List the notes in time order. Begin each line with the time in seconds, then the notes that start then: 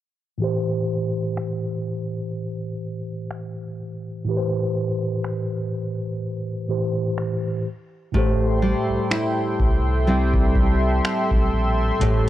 0.38 A2 E3
0.42 G4 C5
1.37 finger snap
3.31 finger snap
4.24 A2 E3
4.29 G4 B4
4.37 C5
5.24 finger snap
6.68 A2 E3 G4 C5
7.18 finger snap
8.12 A1 A2 A3 G4 A4 E5 G5 C6, kick
8.18 C5
8.62 G3
8.89 C2
9.11 E4, finger snap
9.60 C2, kick
10.07 G3 C4 E4
10.34 kick
10.56 kick
11.05 finger snap
11.31 B1, kick
11.53 A#1
11.99 A1 A2 A3 G4 A5, kick, closed hi-hat
12.05 A4